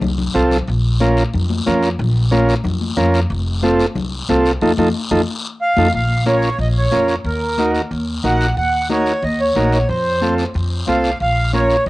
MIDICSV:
0, 0, Header, 1, 5, 480
1, 0, Start_track
1, 0, Tempo, 329128
1, 980, Time_signature, 4, 2, 24, 8
1, 17346, End_track
2, 0, Start_track
2, 0, Title_t, "Accordion"
2, 0, Program_c, 0, 21
2, 8188, Note_on_c, 0, 77, 103
2, 8628, Note_off_c, 0, 77, 0
2, 8672, Note_on_c, 0, 77, 93
2, 9110, Note_off_c, 0, 77, 0
2, 9156, Note_on_c, 0, 73, 83
2, 9592, Note_off_c, 0, 73, 0
2, 9642, Note_on_c, 0, 75, 84
2, 9744, Note_off_c, 0, 75, 0
2, 9878, Note_on_c, 0, 73, 80
2, 10314, Note_off_c, 0, 73, 0
2, 10340, Note_on_c, 0, 73, 71
2, 10447, Note_off_c, 0, 73, 0
2, 10582, Note_on_c, 0, 70, 76
2, 11248, Note_off_c, 0, 70, 0
2, 12028, Note_on_c, 0, 78, 100
2, 12468, Note_off_c, 0, 78, 0
2, 12504, Note_on_c, 0, 78, 95
2, 12947, Note_off_c, 0, 78, 0
2, 12992, Note_on_c, 0, 73, 90
2, 13467, Note_on_c, 0, 75, 83
2, 13478, Note_off_c, 0, 73, 0
2, 13708, Note_off_c, 0, 75, 0
2, 13714, Note_on_c, 0, 73, 81
2, 14169, Note_off_c, 0, 73, 0
2, 14191, Note_on_c, 0, 73, 76
2, 14407, Note_off_c, 0, 73, 0
2, 14412, Note_on_c, 0, 72, 78
2, 15084, Note_off_c, 0, 72, 0
2, 15865, Note_on_c, 0, 77, 92
2, 16308, Note_off_c, 0, 77, 0
2, 16365, Note_on_c, 0, 77, 107
2, 16799, Note_off_c, 0, 77, 0
2, 16839, Note_on_c, 0, 73, 94
2, 17276, Note_off_c, 0, 73, 0
2, 17346, End_track
3, 0, Start_track
3, 0, Title_t, "Transistor combo organ"
3, 0, Program_c, 1, 18
3, 496, Note_on_c, 1, 60, 85
3, 500, Note_on_c, 1, 65, 69
3, 509, Note_on_c, 1, 69, 92
3, 834, Note_off_c, 1, 60, 0
3, 836, Note_off_c, 1, 65, 0
3, 840, Note_off_c, 1, 69, 0
3, 1460, Note_on_c, 1, 61, 82
3, 1470, Note_on_c, 1, 65, 69
3, 1473, Note_on_c, 1, 70, 78
3, 1796, Note_off_c, 1, 61, 0
3, 1801, Note_off_c, 1, 65, 0
3, 1802, Note_off_c, 1, 70, 0
3, 2424, Note_on_c, 1, 61, 85
3, 2429, Note_on_c, 1, 65, 75
3, 2434, Note_on_c, 1, 70, 84
3, 2758, Note_off_c, 1, 61, 0
3, 2760, Note_off_c, 1, 65, 0
3, 2762, Note_off_c, 1, 70, 0
3, 3373, Note_on_c, 1, 61, 77
3, 3381, Note_on_c, 1, 70, 90
3, 3382, Note_on_c, 1, 65, 76
3, 3711, Note_off_c, 1, 61, 0
3, 3716, Note_off_c, 1, 65, 0
3, 3716, Note_off_c, 1, 70, 0
3, 4330, Note_on_c, 1, 61, 76
3, 4331, Note_on_c, 1, 65, 78
3, 4338, Note_on_c, 1, 70, 87
3, 4669, Note_off_c, 1, 61, 0
3, 4670, Note_off_c, 1, 65, 0
3, 4673, Note_off_c, 1, 70, 0
3, 5293, Note_on_c, 1, 60, 78
3, 5295, Note_on_c, 1, 65, 74
3, 5304, Note_on_c, 1, 69, 87
3, 5630, Note_off_c, 1, 60, 0
3, 5631, Note_off_c, 1, 65, 0
3, 5636, Note_off_c, 1, 69, 0
3, 6259, Note_on_c, 1, 60, 78
3, 6261, Note_on_c, 1, 65, 70
3, 6265, Note_on_c, 1, 69, 93
3, 6593, Note_off_c, 1, 60, 0
3, 6594, Note_off_c, 1, 65, 0
3, 6596, Note_off_c, 1, 69, 0
3, 6739, Note_on_c, 1, 69, 102
3, 6740, Note_on_c, 1, 65, 94
3, 6742, Note_on_c, 1, 63, 100
3, 6891, Note_off_c, 1, 69, 0
3, 6892, Note_off_c, 1, 65, 0
3, 6893, Note_off_c, 1, 63, 0
3, 6980, Note_on_c, 1, 63, 86
3, 6983, Note_on_c, 1, 69, 93
3, 6987, Note_on_c, 1, 65, 84
3, 7131, Note_off_c, 1, 63, 0
3, 7133, Note_off_c, 1, 69, 0
3, 7136, Note_off_c, 1, 65, 0
3, 7455, Note_on_c, 1, 65, 89
3, 7456, Note_on_c, 1, 69, 91
3, 7458, Note_on_c, 1, 63, 83
3, 7609, Note_off_c, 1, 65, 0
3, 7609, Note_off_c, 1, 69, 0
3, 7610, Note_off_c, 1, 63, 0
3, 8430, Note_on_c, 1, 63, 79
3, 8430, Note_on_c, 1, 69, 81
3, 8431, Note_on_c, 1, 65, 74
3, 8577, Note_off_c, 1, 63, 0
3, 8577, Note_off_c, 1, 69, 0
3, 8578, Note_off_c, 1, 65, 0
3, 9132, Note_on_c, 1, 61, 65
3, 9135, Note_on_c, 1, 65, 60
3, 9137, Note_on_c, 1, 70, 74
3, 9469, Note_off_c, 1, 61, 0
3, 9471, Note_off_c, 1, 65, 0
3, 9472, Note_off_c, 1, 70, 0
3, 10087, Note_on_c, 1, 61, 67
3, 10089, Note_on_c, 1, 65, 59
3, 10103, Note_on_c, 1, 70, 74
3, 10427, Note_off_c, 1, 61, 0
3, 10428, Note_off_c, 1, 65, 0
3, 10435, Note_off_c, 1, 70, 0
3, 11063, Note_on_c, 1, 63, 67
3, 11072, Note_on_c, 1, 66, 60
3, 11078, Note_on_c, 1, 70, 73
3, 11395, Note_off_c, 1, 63, 0
3, 11399, Note_off_c, 1, 66, 0
3, 11403, Note_off_c, 1, 70, 0
3, 12014, Note_on_c, 1, 63, 65
3, 12017, Note_on_c, 1, 66, 67
3, 12023, Note_on_c, 1, 70, 77
3, 12351, Note_off_c, 1, 63, 0
3, 12352, Note_off_c, 1, 66, 0
3, 12355, Note_off_c, 1, 70, 0
3, 12974, Note_on_c, 1, 63, 64
3, 12980, Note_on_c, 1, 66, 57
3, 12989, Note_on_c, 1, 70, 72
3, 13311, Note_off_c, 1, 63, 0
3, 13314, Note_off_c, 1, 66, 0
3, 13318, Note_off_c, 1, 70, 0
3, 13944, Note_on_c, 1, 63, 67
3, 13946, Note_on_c, 1, 66, 64
3, 13947, Note_on_c, 1, 70, 76
3, 14276, Note_off_c, 1, 63, 0
3, 14277, Note_off_c, 1, 66, 0
3, 14278, Note_off_c, 1, 70, 0
3, 14898, Note_on_c, 1, 60, 67
3, 14909, Note_on_c, 1, 65, 61
3, 14910, Note_on_c, 1, 69, 69
3, 15233, Note_off_c, 1, 60, 0
3, 15239, Note_off_c, 1, 65, 0
3, 15239, Note_off_c, 1, 69, 0
3, 15863, Note_on_c, 1, 60, 65
3, 15873, Note_on_c, 1, 65, 62
3, 15881, Note_on_c, 1, 69, 72
3, 16197, Note_off_c, 1, 60, 0
3, 16202, Note_off_c, 1, 65, 0
3, 16205, Note_off_c, 1, 69, 0
3, 16818, Note_on_c, 1, 61, 63
3, 16826, Note_on_c, 1, 65, 59
3, 16835, Note_on_c, 1, 70, 69
3, 17154, Note_off_c, 1, 61, 0
3, 17158, Note_off_c, 1, 65, 0
3, 17163, Note_off_c, 1, 70, 0
3, 17346, End_track
4, 0, Start_track
4, 0, Title_t, "Upright bass"
4, 0, Program_c, 2, 32
4, 17, Note_on_c, 2, 36, 82
4, 403, Note_off_c, 2, 36, 0
4, 510, Note_on_c, 2, 36, 91
4, 890, Note_off_c, 2, 36, 0
4, 990, Note_on_c, 2, 34, 95
4, 1754, Note_off_c, 2, 34, 0
4, 1956, Note_on_c, 2, 41, 87
4, 2333, Note_off_c, 2, 41, 0
4, 2437, Note_on_c, 2, 41, 93
4, 2813, Note_off_c, 2, 41, 0
4, 2902, Note_on_c, 2, 34, 100
4, 3668, Note_off_c, 2, 34, 0
4, 3856, Note_on_c, 2, 41, 87
4, 4240, Note_off_c, 2, 41, 0
4, 4332, Note_on_c, 2, 41, 100
4, 4718, Note_off_c, 2, 41, 0
4, 4813, Note_on_c, 2, 29, 97
4, 5582, Note_off_c, 2, 29, 0
4, 5768, Note_on_c, 2, 36, 87
4, 6155, Note_off_c, 2, 36, 0
4, 6254, Note_on_c, 2, 36, 100
4, 6638, Note_off_c, 2, 36, 0
4, 6734, Note_on_c, 2, 41, 87
4, 6913, Note_off_c, 2, 41, 0
4, 6964, Note_on_c, 2, 41, 96
4, 7147, Note_off_c, 2, 41, 0
4, 7453, Note_on_c, 2, 41, 93
4, 7632, Note_off_c, 2, 41, 0
4, 8408, Note_on_c, 2, 41, 90
4, 8589, Note_off_c, 2, 41, 0
4, 8654, Note_on_c, 2, 34, 80
4, 9422, Note_off_c, 2, 34, 0
4, 9602, Note_on_c, 2, 34, 92
4, 9991, Note_off_c, 2, 34, 0
4, 10563, Note_on_c, 2, 39, 88
4, 11336, Note_off_c, 2, 39, 0
4, 11533, Note_on_c, 2, 39, 86
4, 11918, Note_off_c, 2, 39, 0
4, 12014, Note_on_c, 2, 34, 81
4, 12398, Note_off_c, 2, 34, 0
4, 12496, Note_on_c, 2, 39, 81
4, 13264, Note_off_c, 2, 39, 0
4, 13455, Note_on_c, 2, 39, 87
4, 13839, Note_off_c, 2, 39, 0
4, 13938, Note_on_c, 2, 34, 88
4, 14321, Note_off_c, 2, 34, 0
4, 14426, Note_on_c, 2, 41, 85
4, 15191, Note_off_c, 2, 41, 0
4, 15387, Note_on_c, 2, 41, 92
4, 15767, Note_off_c, 2, 41, 0
4, 15870, Note_on_c, 2, 36, 74
4, 16249, Note_off_c, 2, 36, 0
4, 16344, Note_on_c, 2, 34, 82
4, 17110, Note_off_c, 2, 34, 0
4, 17302, Note_on_c, 2, 34, 91
4, 17346, Note_off_c, 2, 34, 0
4, 17346, End_track
5, 0, Start_track
5, 0, Title_t, "Drums"
5, 21, Note_on_c, 9, 64, 106
5, 33, Note_on_c, 9, 74, 78
5, 167, Note_off_c, 9, 64, 0
5, 179, Note_off_c, 9, 74, 0
5, 265, Note_on_c, 9, 64, 81
5, 411, Note_off_c, 9, 64, 0
5, 507, Note_on_c, 9, 73, 63
5, 653, Note_off_c, 9, 73, 0
5, 748, Note_on_c, 9, 64, 70
5, 749, Note_on_c, 9, 73, 74
5, 894, Note_off_c, 9, 64, 0
5, 895, Note_off_c, 9, 73, 0
5, 983, Note_on_c, 9, 74, 67
5, 1129, Note_off_c, 9, 74, 0
5, 1464, Note_on_c, 9, 63, 80
5, 1469, Note_on_c, 9, 73, 72
5, 1610, Note_off_c, 9, 63, 0
5, 1615, Note_off_c, 9, 73, 0
5, 1705, Note_on_c, 9, 73, 65
5, 1851, Note_off_c, 9, 73, 0
5, 1946, Note_on_c, 9, 74, 80
5, 1948, Note_on_c, 9, 64, 76
5, 2092, Note_off_c, 9, 74, 0
5, 2094, Note_off_c, 9, 64, 0
5, 2184, Note_on_c, 9, 63, 73
5, 2330, Note_off_c, 9, 63, 0
5, 2424, Note_on_c, 9, 73, 76
5, 2425, Note_on_c, 9, 63, 80
5, 2570, Note_off_c, 9, 73, 0
5, 2571, Note_off_c, 9, 63, 0
5, 2661, Note_on_c, 9, 73, 69
5, 2807, Note_off_c, 9, 73, 0
5, 2900, Note_on_c, 9, 64, 74
5, 2909, Note_on_c, 9, 74, 67
5, 3046, Note_off_c, 9, 64, 0
5, 3055, Note_off_c, 9, 74, 0
5, 3385, Note_on_c, 9, 73, 72
5, 3389, Note_on_c, 9, 63, 85
5, 3530, Note_off_c, 9, 73, 0
5, 3535, Note_off_c, 9, 63, 0
5, 3631, Note_on_c, 9, 73, 70
5, 3777, Note_off_c, 9, 73, 0
5, 3849, Note_on_c, 9, 64, 91
5, 3867, Note_on_c, 9, 74, 79
5, 3995, Note_off_c, 9, 64, 0
5, 4012, Note_off_c, 9, 74, 0
5, 4101, Note_on_c, 9, 63, 69
5, 4247, Note_off_c, 9, 63, 0
5, 4331, Note_on_c, 9, 63, 79
5, 4350, Note_on_c, 9, 73, 70
5, 4477, Note_off_c, 9, 63, 0
5, 4496, Note_off_c, 9, 73, 0
5, 4581, Note_on_c, 9, 73, 72
5, 4727, Note_off_c, 9, 73, 0
5, 4814, Note_on_c, 9, 74, 74
5, 4960, Note_off_c, 9, 74, 0
5, 5287, Note_on_c, 9, 63, 78
5, 5301, Note_on_c, 9, 73, 74
5, 5433, Note_off_c, 9, 63, 0
5, 5447, Note_off_c, 9, 73, 0
5, 5536, Note_on_c, 9, 73, 71
5, 5682, Note_off_c, 9, 73, 0
5, 5767, Note_on_c, 9, 64, 92
5, 5778, Note_on_c, 9, 74, 81
5, 5912, Note_off_c, 9, 64, 0
5, 5924, Note_off_c, 9, 74, 0
5, 6254, Note_on_c, 9, 73, 71
5, 6261, Note_on_c, 9, 63, 77
5, 6400, Note_off_c, 9, 73, 0
5, 6406, Note_off_c, 9, 63, 0
5, 6498, Note_on_c, 9, 73, 76
5, 6644, Note_off_c, 9, 73, 0
5, 6731, Note_on_c, 9, 74, 98
5, 6743, Note_on_c, 9, 63, 104
5, 6877, Note_off_c, 9, 74, 0
5, 6889, Note_off_c, 9, 63, 0
5, 6976, Note_on_c, 9, 63, 91
5, 6977, Note_on_c, 9, 74, 94
5, 7122, Note_off_c, 9, 63, 0
5, 7122, Note_off_c, 9, 74, 0
5, 7455, Note_on_c, 9, 74, 97
5, 7457, Note_on_c, 9, 63, 98
5, 7601, Note_off_c, 9, 74, 0
5, 7603, Note_off_c, 9, 63, 0
5, 8407, Note_on_c, 9, 74, 97
5, 8408, Note_on_c, 9, 63, 90
5, 8553, Note_off_c, 9, 74, 0
5, 8554, Note_off_c, 9, 63, 0
5, 8644, Note_on_c, 9, 74, 70
5, 8790, Note_off_c, 9, 74, 0
5, 9124, Note_on_c, 9, 63, 75
5, 9128, Note_on_c, 9, 73, 68
5, 9270, Note_off_c, 9, 63, 0
5, 9274, Note_off_c, 9, 73, 0
5, 9367, Note_on_c, 9, 73, 65
5, 9513, Note_off_c, 9, 73, 0
5, 9614, Note_on_c, 9, 74, 73
5, 9760, Note_off_c, 9, 74, 0
5, 10080, Note_on_c, 9, 63, 71
5, 10091, Note_on_c, 9, 73, 70
5, 10226, Note_off_c, 9, 63, 0
5, 10237, Note_off_c, 9, 73, 0
5, 10325, Note_on_c, 9, 73, 67
5, 10471, Note_off_c, 9, 73, 0
5, 10567, Note_on_c, 9, 74, 67
5, 10713, Note_off_c, 9, 74, 0
5, 11051, Note_on_c, 9, 63, 69
5, 11052, Note_on_c, 9, 73, 70
5, 11197, Note_off_c, 9, 63, 0
5, 11198, Note_off_c, 9, 73, 0
5, 11294, Note_on_c, 9, 73, 65
5, 11440, Note_off_c, 9, 73, 0
5, 11541, Note_on_c, 9, 74, 72
5, 11687, Note_off_c, 9, 74, 0
5, 12015, Note_on_c, 9, 63, 70
5, 12027, Note_on_c, 9, 73, 72
5, 12161, Note_off_c, 9, 63, 0
5, 12173, Note_off_c, 9, 73, 0
5, 12262, Note_on_c, 9, 73, 73
5, 12408, Note_off_c, 9, 73, 0
5, 12501, Note_on_c, 9, 74, 69
5, 12646, Note_off_c, 9, 74, 0
5, 12973, Note_on_c, 9, 73, 66
5, 12975, Note_on_c, 9, 63, 72
5, 13119, Note_off_c, 9, 73, 0
5, 13120, Note_off_c, 9, 63, 0
5, 13214, Note_on_c, 9, 73, 67
5, 13360, Note_off_c, 9, 73, 0
5, 13454, Note_on_c, 9, 74, 70
5, 13600, Note_off_c, 9, 74, 0
5, 13935, Note_on_c, 9, 63, 76
5, 13939, Note_on_c, 9, 73, 62
5, 14081, Note_off_c, 9, 63, 0
5, 14085, Note_off_c, 9, 73, 0
5, 14182, Note_on_c, 9, 73, 66
5, 14328, Note_off_c, 9, 73, 0
5, 14422, Note_on_c, 9, 74, 61
5, 14567, Note_off_c, 9, 74, 0
5, 14897, Note_on_c, 9, 63, 73
5, 14901, Note_on_c, 9, 73, 69
5, 15043, Note_off_c, 9, 63, 0
5, 15047, Note_off_c, 9, 73, 0
5, 15144, Note_on_c, 9, 73, 64
5, 15290, Note_off_c, 9, 73, 0
5, 15377, Note_on_c, 9, 74, 70
5, 15523, Note_off_c, 9, 74, 0
5, 15855, Note_on_c, 9, 63, 75
5, 15864, Note_on_c, 9, 73, 60
5, 16001, Note_off_c, 9, 63, 0
5, 16010, Note_off_c, 9, 73, 0
5, 16103, Note_on_c, 9, 73, 68
5, 16249, Note_off_c, 9, 73, 0
5, 16339, Note_on_c, 9, 74, 66
5, 16485, Note_off_c, 9, 74, 0
5, 16812, Note_on_c, 9, 73, 69
5, 16822, Note_on_c, 9, 63, 71
5, 16958, Note_off_c, 9, 73, 0
5, 16968, Note_off_c, 9, 63, 0
5, 17059, Note_on_c, 9, 73, 62
5, 17205, Note_off_c, 9, 73, 0
5, 17300, Note_on_c, 9, 74, 76
5, 17346, Note_off_c, 9, 74, 0
5, 17346, End_track
0, 0, End_of_file